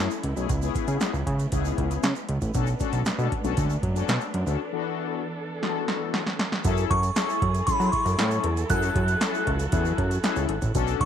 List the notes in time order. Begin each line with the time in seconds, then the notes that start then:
Already playing: F#3 A3 C#4 E4 G#4 A4
0.11 closed hi-hat, shaker
0.23 C#2, closed hi-hat
0.36 B1 A3 C#4 E4 G#4, closed hi-hat, shaker
0.49 C#2 C#3 G#3 B3, kick, closed hi-hat, shaker
0.62 B3 C#4 E4 G#4, closed hi-hat, shaker
0.75 kick, closed hi-hat, shaker
0.87 C#3, closed hi-hat, shaker
1.00 snare, closed hi-hat, shaker
1.13 C#2, shaker
1.27 C#3, kick, closed hi-hat
1.39 closed hi-hat, shaker
1.52 C#2 B3 C#4 E4 G#4, kick, closed hi-hat, shaker
1.65 shaker
1.78 C#2, kick, closed hi-hat
1.91 closed hi-hat, shaker
2.03 C#3, snare, closed hi-hat, shaker
2.15 closed hi-hat, shaker
2.29 C#2, closed hi-hat
2.41 A1, kick, closed hi-hat, shaker
2.54 B1 A3 C#4 D4 F#4 A4, kick, closed hi-hat, shaker
2.67 closed hi-hat, shaker
2.80 C#4 D4 F#4 A4, kick, closed hi-hat, shaker
2.93 B1, closed hi-hat, shaker
3.06 B2, snare, closed hi-hat, shaker
3.18 B2 C#4 D4 F#4 A4, shaker
3.32 kick, closed hi-hat
3.44 B1 C#4 D4 F#4 A4, closed hi-hat, shaker
3.57 D2, kick, closed hi-hat, shaker
3.70 shaker
3.83 F#2, kick, closed hi-hat
3.95 C#4 D4 F#4 A4, closed hi-hat, shaker
4.08 B2, snare, closed hi-hat, shaker
4.21 closed hi-hat, shaker
4.34 F#2, closed hi-hat
4.47 D2 C#4 D4 F#4 A4, closed hi-hat, shaker
4.60 E3 A4
4.72 E3 B3 D4 F#4 A4
5.62 E3 B3 D4 F#4 G#4, snare
5.69 A4
5.88 snare
6.14 snare
6.26 snare
6.39 snare
6.52 snare
6.64 F#2 F#3 C#4 E4 G#4 A4, kick, closed hi-hat, shaker
6.77 closed hi-hat, shaker
6.90 F#2 C#6, kick, closed hi-hat
7.03 closed hi-hat, shaker
7.16 C#4 E4 G#4 A4, snare, closed hi-hat, shaker
7.29 shaker
7.42 F#2, kick, closed hi-hat
7.55 closed hi-hat, shaker
7.67 F#3 C#4 E4 G#4 A4 B5, kick, closed hi-hat, shaker
7.80 F#3, shaker
7.86 C6
7.92 C#6, kick, closed hi-hat
8.05 F#2, closed hi-hat, shaker
8.18 A2 C#4 E4 G#4 A4, snare, closed hi-hat, shaker
8.31 closed hi-hat, shaker
8.44 E2, closed hi-hat
8.57 closed hi-hat, shaker
8.70 F#2 C#4 E4 F#4 G#4 A4 F#6, kick, closed hi-hat, shaker
8.82 closed hi-hat, shaker
8.95 F#2, kick, closed hi-hat
9.08 closed hi-hat, shaker
9.21 C#4 E4 G#4 A4, snare, closed hi-hat, shaker
9.35 shaker
9.47 C#2, kick, closed hi-hat
9.59 closed hi-hat, shaker
9.72 E2 C#4 E4 G#4 A4, kick, closed hi-hat, shaker
9.85 shaker
9.98 F#2, kick, closed hi-hat
10.11 closed hi-hat, shaker
10.23 C#4 E4 G#4 A4, snare, closed hi-hat, shaker
10.36 C#2, closed hi-hat, shaker
10.49 G#1, closed hi-hat
10.62 A1, kick, closed hi-hat, shaker
10.75 B1 A3 B3 C#4 D4 F#4 A4, kick, closed hi-hat, shaker
10.87 closed hi-hat, shaker
11.00 B1 C#6, kick, closed hi-hat